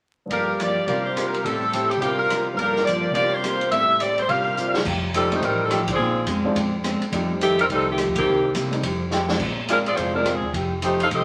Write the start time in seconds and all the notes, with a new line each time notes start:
0.26 G2 G3
0.30 G2 F3 A#3 D4 G4 A#4 D5 F5, kick, ride
0.34 F4 A4
0.58 G2 F3 A#3 D4 D5, hi-hat pedal, ride
0.86 C3 G3 A#3 D4 F4 G4 A#4 C5 D5 F5, kick, ride
1.05 C5
1.15 C3 G3 A#3 F4, cross-stick, hi-hat pedal, ride
1.26 A#4
1.34 ride
1.43 A2 G3 C4 E4 G4 A4 C5 E5, kick, ride
1.72 A2 G3 C4 E4, hi-hat pedal, ride
1.90 G4, ride
1.97 C3 G3 G4
2.01 G3 A#3 D4 F4 G4 A#4 C5 F5, kick, ride
2.08 A#4
2.18 A#4
2.30 C3 G3 A#3 F4, cross-stick, hi-hat pedal, ride
2.54 G2 G3 A#4
2.58 G2 F3 A#3 D4 F4 G4 D5 F5, kick, ride
2.64 A4
2.76 snare
2.84 G2 F3 A#3 D4 D5, hi-hat pedal, ride
3.10 C3 G3 D5
3.15 G3 A#3 D4 F4 G4 A#4 C5 F5, kick, ride
3.22 A#4
3.32 C5
3.43 C3 G3 A#3 F4, cross-stick, hi-hat pedal, ride
3.61 ride
3.71 A2 G3 C4 E4 G4 A4 C5 E5, kick, ride
4.00 A2 G3 C4 E4 D5, hi-hat pedal, ride
4.18 C5, ride
4.28 C3 G3 A#3 D4 F4 G4 A#4 C5 F5, kick, ride
4.57 C3 G3 A#3 F4 C5 G5, hi-hat pedal
4.67 D5 A#5
4.74 C6, snare
4.85 F1 F3 A3 D#4, kick, crash
4.89 G4
5.14 F3 G3 A3 C4 D#4 G4 A4, hi-hat pedal, ride
5.32 G3 A3 C4 D#4 G4 C5, ride
5.42 A1 F3 G3 A3 C4 D#4 G4 A#4, kick, ride
5.64 G3 C4 D#4 A4
5.70 F3 A3 D#4 G4, cross-stick, hi-hat pedal, ride
5.88 C4, kick, ride
5.92 F3 D4 G#4
5.98 A#1 A#2 G#3 C4 D4
6.26 F2 A#2 G#3 C4 D4, hi-hat pedal, ride
6.44 F3 G#3 C4 D4
6.55 F2 A#2 G#3 C4 D4, kick, ride
6.84 A#2 G#3 C4 D4, cross-stick, hi-hat pedal, ride
7.01 muted upright bass stroke, ride
7.12 F2 F3 G3 A3 C4 D#4 G4, kick, ride
7.41 D#3 F3 A3 C4 D#4 G4, hi-hat pedal, ride
7.59 G3 C4 D#4 A#4, ride
7.69 C2 F3 G3 A3 C4 D#4 G4 A4, kick, ride
7.90 D#3 A3 C4 G4
7.97 F3 A3 D#4 G4, cross-stick, hi-hat pedal, ride
8.07 D#2
8.15 B1 D#3 A#3 C4 G4, kick, ride
8.26 C2 C3 G3 A#3 D#4
8.54 C3 G3 A#3 D#4, hi-hat pedal, ride
8.71 G3 A3 C4 D#4, ride
8.82 F2 F3 A3 D#4 G4, kick, ride
9.11 F3 A3 D#4 G4, snare, hi-hat pedal
9.28 F3 G#3 C4 D4, snare
9.39 A#1 A#2 G#3 C4 D4, kick, crash
9.67 A#2 G#3 C4 D4 F4 A#4, hi-hat pedal, ride
9.86 C4 F4 G#4 D5, ride
9.96 F1 A#2 G#3 C4 D4 F4 C5, kick, ride
10.14 F3 G#3 C4 D4 F4 A#4
10.24 A#2 G#3 C4 D4, cross-stick, hi-hat pedal, ride
10.35 F3 C4 D4 G#4
10.42 D#2
10.52 F1 F3 A3 D#4 G4, kick, ride
10.82 F3 A3 D#4 G4 C5, hi-hat pedal, ride
11.00 D#4 A4 C5 F5, ride
11.10 C2 F3 A3 C4 D#4 G4 A4 D#5, kick, ride